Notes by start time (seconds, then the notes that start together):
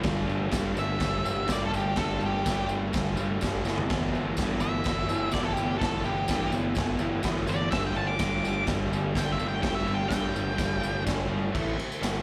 0.00 G2 D3 G3, crash
0.04 G1, kick, snare, tambourine
0.24 G1 G2 D3 G3
0.29 tambourine
0.48 G2 D3 G3, crash
0.52 G2, kick, snare, tambourine
0.74 G1 G2 D3 G3, tambourine
0.79 E5
0.99 G1 G2 D3 G3, kick, snare, tambourine, crash
1.23 G1 G2 D3 G3, tambourine
1.45 G1 G2 D3 G3, kick, snare, crash
1.50 D5, tambourine
1.65 A4
1.70 G1 G2 D3 G3, tambourine
1.76 G4
1.96 G1 G2 D3 G3 A4, kick, snare, tambourine, crash
2.20 G1 G2 D3 G3, tambourine
2.25 G4
2.43 G2 D3 G3, kick, tambourine, crash
2.47 snare
2.67 G1 G2 D3 G3, tambourine
2.93 G1 G2 D3 G3, kick, snare, tambourine, crash
3.16 G1 G2 D3 G3, tambourine
3.40 G1 G2 D3 G3, kick, tambourine, crash
3.44 snare
3.64 G1 E2 B2 E3, snare, tambourine
3.78 floor tom
3.88 G1 E2 B2 E3, kick, snare, tambourine, crash
4.12 G1 E2 B2 E3, tambourine
4.37 E2 G2 B2 E3, kick, snare, tambourine, crash
4.60 G1 E2 B2 E3 E5, tambourine
4.84 G1 E2 B2 E3, kick, snare, tambourine, crash
5.09 G1 E2 B2 E3, tambourine
5.31 G1 E2 B2 E3 D5, kick, tambourine, crash
5.35 snare
5.43 A4
5.53 E2 B2 G4
5.57 G1 E3, tambourine
5.78 G1 E2 B2 E3 A4, kick, tambourine, crash
5.83 snare
6.04 G1 E2 B2 E3 G4, tambourine
6.28 E2 G2 B2 E3, kick, snare, tambourine, crash
6.52 G1 E2 B2 E3, tambourine
6.75 G1 E2 B2 E3, kick, snare, tambourine, crash
6.98 G1 E2 B2, tambourine
7.02 E3
7.22 G1 E2 B2 E3, kick, snare, tambourine, crash
7.47 G1 E2 B2 E3 D5, tambourine
7.70 G1 G2 D3 G3 E5, kick, snare, tambourine, crash
7.87 G5
7.93 G1 G2 D3 G3 A5, tambourine
8.07 D6
8.18 G2 D3 G3 D6, kick, snare, tambourine, crash
8.43 G1 G2 D3 G3, tambourine
8.67 G1 G2 D3 G3, kick, snare, tambourine, crash
8.90 G1 G2 D3 G3, tambourine
9.14 G1 G2 D3 G3, kick, snare, tambourine, crash
9.19 G5
9.32 E5
9.37 G1 G2 D3 G3, tambourine
9.48 G5
9.62 G1 G2 D3 G3 G5, kick, snare, tambourine, crash
9.75 E5
9.85 G1 G2 D3 G3, tambourine
9.94 G5
10.08 G2 D3 G3 G5, kick, snare, tambourine, crash
10.32 G1 G2 D3 G3, tambourine
10.54 G2 D3 G3
10.58 G1, kick, snare, tambourine, crash
10.80 G1 G2 D3 G3, tambourine
11.03 G2 D3 G3, kick, tambourine
11.07 G1, snare, crash
11.28 G1 G2 D3 G3
11.51 A2 E3 A3, kick, ride
11.56 A1, tambourine
11.68 tambourine
11.77 muted overdriven electric guitar stroke, muted picked electric bass stroke, ride, tambourine
11.92 tambourine
12.01 G1 G2 D3 G3, snare, ride, tambourine
12.16 tambourine